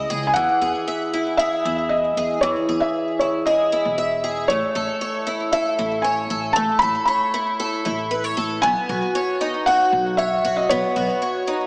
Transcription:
Already playing: C#3 E4 D#5
0.10 C#2 G#4
0.27 G#5
0.34 E2 E3 F#5
0.61 E2 G#4
0.88 E5
1.14 E4
1.37 G#4 E5
1.65 E2 E4
1.89 D#5
2.17 E2 G#4
2.41 E2 E3 C#5
2.69 E2 G#4
2.80 E5
3.19 E4 C#5
3.46 G#4 D#5
3.72 E4
3.85 E1
3.98 E5
4.24 G#4
4.48 A1 A3 C#5
4.75 A1 A4
5.01 C#5
5.27 E4
5.52 A4 E5
5.79 A1 E4
6.02 C#5 G#5
6.30 A1 A4
6.53 A1 A3 A5
6.79 A1 A4 B5
7.05 C#5 B5
7.34 E4
7.60 A4
7.85 A1 E4
8.11 B4
8.24 C#5
8.37 A1 A4
8.62 B1 B3 G#5
8.89 B1 F#4
9.15 C#5
9.41 D#4
9.66 F#4 F#5
9.92 B1
10.17 C#5 E5
10.44 B1 F#4
10.57 D#5
10.69 B1 B3 C#5
10.96 B1 F#4
11.22 C#5
11.47 D#4

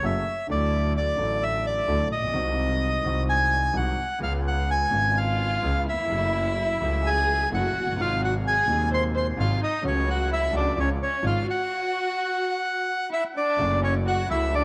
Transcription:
0.03 F#1 F#2 C#3 F#3 A3 F#4 E5
0.47 D2 D3 F#3 A3
0.51 E4 D5
0.97 D5
1.16 A1 A2 D3 F#3 A3
1.21 E4
1.43 E5
1.66 D5
1.87 D2 D3 F#3 A3 E4
2.11 A#1 D#5
2.17 A1
2.22 A#1
2.28 B1
2.32 C2 C3 D#3 G#3 C4 F#4
3.02 C2 C3 D#3 G#3 C4
3.06 F#4
3.29 G#5
3.73 C2 C3 D#3 G#3 C4 F#4 F#5
4.19 C#2 C#3 G#3 B3 F4
4.23 F5
4.47 F#5
4.71 G#5
4.89 G#1 G#2 C#3 G#3 B3 F4
5.15 F4 F5
5.62 C#2 C#3 G#3 B3 F4
5.87 E4 E5
5.92 D#2
5.98 E2
6.05 F2 C#3
6.10 F#1 F#2 F#3 A3 E4
6.80 C#2 C#3 F#3 A3 E4
7.05 G#4 G#5
7.51 F#1 F#2 C#3 F#3 A3 E4 F#4 F#5
7.75 F#1
7.81 F1
7.86 F#1
7.92 G1 C3
7.97 G#1 G#2 F#3 G#3 D#4 F4
8.01 F5
8.21 F#4 F#5
8.44 G#4 G#5
8.66 D#1 D#2 C3 F#3 G#3
8.70 D#4
8.91 C5 C6
9.14 C5 C6
9.36 G#1 G#2 C3 F#3 G#3 D#4 F4 F5
9.62 D#4 D#5
9.81 C#2 C#3 F#3 A3 C#4
9.85 F#4 C#5
10.08 F#4 F#5
10.31 E4 E5
10.53 C#2 C#3 F#3 A3 D4 F#4 D5
10.76 C#2 C#3 F3 G#3 C#4 F4 C#5
11.01 C#4 C#5
11.23 G#1 G#2 C#3 F3 G#3 F4 F5
11.47 F#4 F#5
13.10 E4 E5
13.35 D4 D5
13.57 F#1 F#2 C#3 F#3 A3 F#4
13.82 C#4 C#5
14.06 F#4 F#5
14.29 C#2 F#3 A3 E4 F#4 E5
14.54 D4 D5

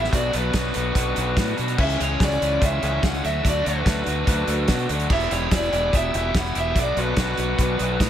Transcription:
Already playing: E4 G4 E5
0.04 snare
0.10 B1 B2 F#3 B3 D4 F#4, kick, closed hi-hat
0.14 D5
0.31 B1 B2 F#3 B3 D4 F#4, closed hi-hat
0.36 B4
0.53 B1 B2 F#3 B3 D4 F#4, kick, snare, closed hi-hat
0.74 B1 B2 F#3 B3 D4 F#4, closed hi-hat
0.95 B1 B2 F#3 B3 D4 F#4, kick, closed hi-hat
1.16 B1 B2 F#3 B3 D4 F#4, closed hi-hat
1.36 A2 B2 F#3 B3 D4 F#4, kick, snare, closed hi-hat
1.47 closed hi-hat
1.56 B2 F#3 B3 D4 F#4, closed hi-hat
1.68 closed hi-hat
1.77 C#2 C#3 E3 G#3 C#4 G#4, kick, crash
1.81 E5
1.90 closed hi-hat
1.98 C#2 C#3 E3 G#3 C#4 G#4 C#5, closed hi-hat
2.19 C#2 C#3 E3 G#3 C#4 G#4 D5, kick, snare, closed hi-hat
2.31 closed hi-hat
2.40 C#2 C#3 E3 G#3 C#4 G#4, closed hi-hat
2.60 C#2 C#3 E3 G#3 C#4 G#4, kick, closed hi-hat
2.65 E5
2.81 C#2 C#3 E3 G#3 C#4 G#4, closed hi-hat
3.01 C#2 C#3 E3 G#3 C#4 G#4 F#5, kick, snare, closed hi-hat
3.15 closed hi-hat
3.23 D2 D3 F#3 A3 D4 F#4 E5, closed hi-hat
3.43 D2 D3 F#3 A3 D4 F#4, kick, closed hi-hat
3.48 D5
3.62 D2 D3 F#3 A3 D4 F#4, closed hi-hat
3.67 B4
3.84 D2 D3 F#3 A3 D4 F#4, kick, snare, closed hi-hat
4.06 D2 D3 F#3 A3 D4 F#4, closed hi-hat
4.27 D2 D3 F#3 A3 D4 F#4, kick, closed hi-hat
4.47 D2 D3 F#3 A3 D4 F#4, closed hi-hat
4.68 B2 D3 F#3 A3 D4 F#4, kick, snare, closed hi-hat
4.79 closed hi-hat
4.89 D2 D3 F#3 A3 D4 F#4, closed hi-hat
4.99 closed hi-hat
5.10 E1 E3 B3 E4 G4 E5, kick, crash
5.20 closed hi-hat
5.30 E1 E3 B3 E4 G4 C#5, closed hi-hat
5.51 E1 E3 B3 E4 G4 D5, kick, snare, closed hi-hat
5.62 closed hi-hat
5.71 E1 E3 B3 E4 G4, closed hi-hat
5.92 E1 E3 B3 E4 G4, kick, closed hi-hat
5.96 E5
6.13 E1 E3 B3 E4 G4, closed hi-hat
6.34 E1 E3 B3 E4 G4 F#5, kick, snare, closed hi-hat
6.46 closed hi-hat
6.54 E1 E3 B3 E4 G4, closed hi-hat
6.59 E5
6.75 B1 B2 F#3 B3 D4 F#4, kick, closed hi-hat
6.81 D5
6.96 B1 B2 F#3 B3 D4 F#4 B4, closed hi-hat
7.16 B1 B2 F#3 B3 D4 F#4, kick, snare, closed hi-hat
7.37 B1 B2 F#3 B3 D4 F#4, closed hi-hat
7.58 B1 B2 F#3 B3 D4 F#4, kick, closed hi-hat
7.78 B1 B2 F#3 B3 D4 F#4, closed hi-hat
8.00 A2 B2 F#3 B3 D4 F#4, kick, snare, closed hi-hat

